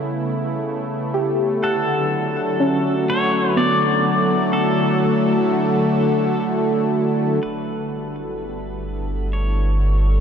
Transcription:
Already playing: analog synth pad C#3 A3 B3 E4 A4, synth pluck G3
1.14 synth pluck G4
1.62 analog synth pad D3, synth drone A3 E4, pedal steel guitar A4, synth pluck F#5
1.95 analog synth pad F#3
2.50 analog synth pad F#4
2.60 synth pluck C#4
3.10 pedal steel guitar C#5
3.56 synth pluck B3, pedal steel guitar D5
4.53 pedal steel guitar A4
7.43 analog synth bass G1, synth drone A3 E4, pedal steel guitar B4
7.74 analog synth pad G3
8.18 analog synth pad E4
8.28 analog synth pad B3
9.33 pedal steel guitar C#5

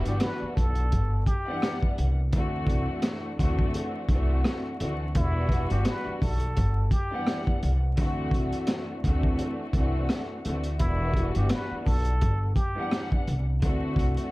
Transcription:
Already playing: string section E3 G3 B3 D4 F#4
0.05 upright bass G1, muted trumpet G4, closed hi-hat
0.20 muted trumpet B4, cross-stick, snare, closed hi-hat
0.42 muted upright bass stroke
0.55 upright bass B1, muted trumpet A4, kick, closed hi-hat
0.75 closed hi-hat
0.92 upright bass G1, kick, closed hi-hat
1.26 muted trumpet G4, kick, closed hi-hat
1.47 string section E3 G3 B3 D4 F#5
1.62 cross-stick, snare, closed hi-hat
1.83 kick
1.98 upright bass C2, closed hi-hat
2.33 upright bass D2, string section E3 A3 C4 D4 F#4, kick, closed hi-hat
2.67 upright bass C2, kick, closed hi-hat
3.02 cross-stick, snare, closed hi-hat
3.38 upright bass D2, string section E3 A3 C4 D4 F#4, kick, closed hi-hat
3.59 kick
3.74 closed hi-hat
4.09 upright bass C2, string section E3 A3 C4 D4 F#4, kick, closed hi-hat
4.44 cross-stick, snare, closed hi-hat
4.80 upright bass D2, string section E3 A3 C4 D4 F#4, closed hi-hat
5.14 upright bass E1, string section E3 G3 B3 D4 F#4, muted trumpet E4, kick, closed hi-hat
5.49 kick, closed hi-hat
5.70 upright bass G1, muted trumpet G4, closed hi-hat
5.85 muted trumpet B4, cross-stick, snare, closed hi-hat
6.07 muted upright bass stroke
6.22 upright bass B1, muted trumpet A4, kick, open hi-hat
6.40 closed hi-hat
6.57 upright bass G1, kick, closed hi-hat
6.91 muted trumpet G4, kick, closed hi-hat
7.11 string section E3 G3 B3 D4 F#5
7.27 cross-stick, snare, closed hi-hat
7.47 kick
7.63 upright bass C2, closed hi-hat
7.97 upright bass D2, string section E3 A3 C4 D4 F#4, kick, closed hi-hat
8.31 upright bass C2, kick, closed hi-hat
8.52 closed hi-hat
8.67 cross-stick, snare, closed hi-hat
9.03 upright bass D2, string section E3 A3 C4 D4 F#4, kick, closed hi-hat
9.23 kick
9.39 closed hi-hat
9.73 upright bass C2, string section E3 A3 C4 D4 F#4, kick, closed hi-hat
10.09 cross-stick, snare, closed hi-hat
10.45 upright bass D2, string section E3 A3 C4 D4 F#4, closed hi-hat
10.64 closed hi-hat
10.79 upright bass E1, string section E3 G3 B3 D4 F#4, muted trumpet E4, kick, closed hi-hat
11.14 kick, closed hi-hat
11.35 upright bass G1, muted trumpet G4, closed hi-hat
11.49 muted trumpet B4, cross-stick, snare, closed hi-hat
11.71 muted upright bass stroke
11.85 upright bass B1, muted trumpet A4, kick, open hi-hat
12.05 closed hi-hat
12.21 upright bass G1, kick, closed hi-hat
12.55 muted trumpet G4, kick, closed hi-hat
12.76 string section E3 G3 B3 D4 F#5
12.91 cross-stick, snare, closed hi-hat
13.12 kick
13.27 upright bass C2, closed hi-hat
13.62 upright bass D2, string section E3 A3 C4 D4 F#4, kick, closed hi-hat
13.96 upright bass C2, kick, closed hi-hat
14.17 closed hi-hat

